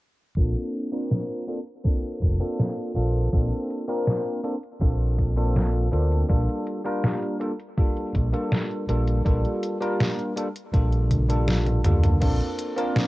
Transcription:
0.37 fingered electric bass A#1, tine electric piano A#3 C4 D4 F4 A4, kick, closed hi-hat
0.74 closed hi-hat
0.92 tine electric piano A#3 C4 D4 F4 A#4, closed hi-hat
1.11 snare, closed hi-hat
1.47 tine electric piano A#3 C4 D4 F4 A4, closed hi-hat
1.67 closed hi-hat
1.84 tine electric piano A#3 C4 D4 F4 A4, kick, closed hi-hat
2.04 closed hi-hat
2.22 fingered electric bass F1, kick, closed hi-hat
2.40 tine electric piano A#3 C4 D4 F4 A4, closed hi-hat
2.60 snare, closed hi-hat
2.78 closed hi-hat
2.95 fingered electric bass A#1, tine electric piano A#3 C4 D4 F4 A4, closed hi-hat
3.15 closed hi-hat
3.32 fingered electric bass A#1, tine electric piano A#3 C4 D4 F4 A4, kick, closed hi-hat
3.52 closed hi-hat
3.70 closed hi-hat
3.88 tine electric piano A#3 C4 D4 F4 A#4, closed hi-hat
4.07 snare, closed hi-hat
4.26 closed hi-hat
4.43 tine electric piano A#3 C4 D4 F4 A4, closed hi-hat
4.63 closed hi-hat
4.80 fingered electric bass A#1, tine electric piano A#3 C4 D4 F4 A4, kick, closed hi-hat
5.01 closed hi-hat
5.18 kick, closed hi-hat
5.36 tine electric piano A#3 C4 D4 F4 A4, closed hi-hat
5.56 snare, closed hi-hat
5.75 closed hi-hat
5.92 fingered electric bass D2, tine electric piano A#3 C4 D4 F4 A4, closed hi-hat
6.12 closed hi-hat
6.28 fingered electric bass A#1, tine electric piano G3 A#3 D4 F4 A4, kick, closed hi-hat
6.49 closed hi-hat
6.67 closed hi-hat
6.84 tine electric piano G3 A#3 D4 F4 A#4, closed hi-hat
7.04 snare, closed hi-hat
7.23 closed hi-hat
7.40 tine electric piano G3 A#3 D4 F4 A4, closed hi-hat
7.60 closed hi-hat
7.77 tine electric piano G3 A#3 D4 F4 A4, kick, closed hi-hat
7.97 closed hi-hat
8.15 fingered electric bass A#1, kick, closed hi-hat
8.32 tine electric piano G3 A#3 D4 F4 A4, closed hi-hat
8.52 snare, closed hi-hat
8.71 closed hi-hat
8.88 fingered electric bass A#1, tine electric piano G3 A#3 D4 F4 A4, closed hi-hat
9.08 closed hi-hat
9.25 fingered electric bass A#1, tine electric piano G3 A#3 D4 F4 A4, kick, closed hi-hat
9.45 closed hi-hat
9.63 closed hi-hat
9.81 tine electric piano G3 A#3 D4 F4 A#4, closed hi-hat
10.00 snare, closed hi-hat
10.19 closed hi-hat
10.36 tine electric piano G3 A#3 D4 F4 A4, closed hi-hat
10.56 closed hi-hat
10.73 fingered electric bass A#1, tine electric piano G3 A#3 D4 F4 A4, kick, closed hi-hat
10.93 closed hi-hat
11.11 kick, closed hi-hat, high tom
11.28 tine electric piano G3 A#3 D4 F4 A4, closed hi-hat
11.48 snare, closed hi-hat, mid tom
11.66 closed hi-hat, mid tom
11.84 fingered electric bass D2, tine electric piano G3 A#3 D4 F4 A4, closed hi-hat, mid tom
12.04 closed hi-hat, mid tom
12.20 fingered electric bass A#1, tine electric piano A#3 C4 D4 F4 A4, kick, closed hi-hat, crash
12.40 closed hi-hat
12.59 closed hi-hat
12.76 tine electric piano A#3 C4 D4 F4 A#4, closed hi-hat
12.96 snare, closed hi-hat

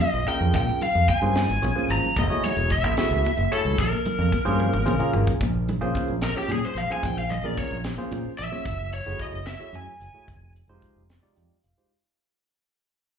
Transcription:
Already playing: lead electric guitar F5
0.00 muted fingered electric bass stroke, closed hi-hat, muted conga, low conga
0.08 lead electric guitar D#5
0.14 fingered electric bass A#1, high conga
0.27 tine electric piano A#3 C#4 F4 G#4 A#4, lead electric guitar G5, muted fingered electric bass stroke, closed hi-hat
0.41 fingered electric bass F2, low conga
0.54 fingered electric bass A#2, lead electric guitar G5, kick, closed hi-hat, muted conga, low conga
0.69 high conga
0.81 lead electric guitar F5, muted fingered electric bass stroke, closed hi-hat, low conga
0.95 fingered electric bass F2
1.08 lead electric guitar G#5, kick, closed hi-hat, muted conga
1.22 fingered electric bass G2, tine electric piano A#3 C#4 F4 G#4 C5, high conga, low conga
1.35 snare, closed hi-hat, low conga
1.49 fingered electric bass G#1, low conga
1.62 fingered electric bass A#1, tine electric piano A#3 C#4 F4 G#4 C#5, closed hi-hat, muted conga, low conga
1.75 tine electric piano A#3 C#4 F4 G#4 C5, high conga
1.88 fingered electric bass G#1, lead electric guitar A#5, closed hi-hat
2.06 low conga
2.16 fingered electric bass F#1, lead electric guitar D#5, kick, closed hi-hat, muted conga, low conga
2.30 tine electric piano A3 E4 F#4 G#4 C#5, high conga
2.43 lead electric guitar C#5, muted fingered electric bass stroke, closed hi-hat, low conga
2.57 fingered electric bass E1
2.70 lead electric guitar E5, kick, closed hi-hat
2.83 fingered electric bass A1, high conga, low conga
2.97 tine electric piano A3 E4 F#4 G#4 E5, snare, closed hi-hat, low conga
3.11 fingered electric bass C#2, low conga
3.24 muted fingered electric bass stroke, closed hi-hat, muted conga
3.37 fingered electric bass F#1, high conga
3.52 tine electric piano A3 E4 F#4 G#4 C#5, lead electric guitar A4, closed hi-hat
3.65 fingered electric bass C#2, low conga
3.78 fingered electric bass A#1, lead electric guitar A#4, kick, closed hi-hat, muted conga, low conga
3.93 high conga, low conga
4.05 muted fingered electric bass stroke, closed hi-hat, low conga
4.19 fingered electric bass F2
4.32 kick, closed hi-hat, muted conga
4.45 fingered electric bass G2, tine electric piano A#3 C#4 F4 G#4 C5, high conga, low conga
4.60 high tom
4.73 fingered electric bass G#1, high tom
4.85 fingered electric bass A#1, tine electric piano A#3 C#4 F4 G#4 C5 F5, mid tom, muted conga
4.99 tine electric piano A#3 C#4 F4 G#4 A#4, mid tom, high conga
5.13 fingered electric bass G#1, tine electric piano G#5, floor tom, low conga
5.27 muted fingered electric bass stroke, kick, low conga
5.41 fingered electric bass A#1, kick, closed hi-hat, muted conga
5.68 closed hi-hat, low conga
5.81 fingered electric bass A#1, tine electric piano A#3 C#4 F4 G#4 C5, high conga, low conga
5.95 muted fingered electric bass stroke, kick, closed hi-hat, muted conga, low conga
6.08 fingered electric bass A#1, low conga
6.22 lead electric guitar A#4, snare, closed hi-hat
6.35 tine electric piano A#3 C#4 F4 G#4 C#5, lead electric guitar G4, muted fingered electric bass stroke, high conga
6.48 fingered electric bass A#2, closed hi-hat, muted conga, low conga
6.52 lead electric guitar G#4
6.62 lead electric guitar C5, muted fingered electric bass stroke
6.75 fingered electric bass A#1, lead electric guitar F5, closed hi-hat
6.89 tine electric piano A#3 C#4 F4 G#4 C5, lead electric guitar G#5, muted fingered electric bass stroke, high conga, low conga
7.03 fingered electric bass A#1, lead electric guitar G5, kick, closed hi-hat, muted conga
7.19 lead electric guitar F5
7.30 lead electric guitar D#5, closed hi-hat, low conga
7.43 fingered electric bass A#1, tine electric piano A#3 C#4 F4 G#4 A#4, lead electric guitar D5, high conga, low conga
7.58 lead electric guitar C#5, kick, closed hi-hat, muted conga, low conga
7.71 fingered electric bass A#1, low conga
7.84 snare, closed hi-hat
7.98 tine electric piano A#3 C#4 F4 G#4 C5, muted fingered electric bass stroke, high conga
8.11 fingered electric bass A#2, closed hi-hat, muted conga, low conga
8.26 muted fingered electric bass stroke
8.39 fingered electric bass A#1, lead electric guitar E5, closed hi-hat
8.52 tine electric piano A#3 C#4 F4 G#4 C#5, muted fingered electric bass stroke, high conga, low conga
8.65 fingered electric bass F#1, kick, closed hi-hat
8.92 lead electric guitar C#5, closed hi-hat
9.06 fingered electric bass F#1, tine electric piano A3 E4 F#4 G#4 C#5
9.19 lead electric guitar D#5, kick, closed hi-hat
9.32 fingered electric bass F#1
9.46 lead electric guitar E5, snare, closed hi-hat
9.59 tine electric piano A3 E4 F#4 G#4 C#5, muted fingered electric bass stroke
9.73 fingered electric bass F#2, lead electric guitar G#5, closed hi-hat
9.87 muted fingered electric bass stroke
10.00 fingered electric bass F#1, closed hi-hat
10.14 tine electric piano A3 E4 F#4 G#4 C#5, muted fingered electric bass stroke
10.28 fingered electric bass F1, kick, closed hi-hat
10.56 closed hi-hat
10.68 fingered electric bass F1, tine electric piano G#3 D#4 F4 G4 C5
10.82 kick, closed hi-hat
10.96 fingered electric bass F1
11.10 snare, closed hi-hat
11.22 tine electric piano G#3 D#4 F4 G4 D5
11.36 fingered electric bass F2, tine electric piano G5, closed hi-hat
11.64 fingered electric bass F1, tine electric piano F5, closed hi-hat
11.78 tine electric piano G#3 D#4 F4 G4 C5

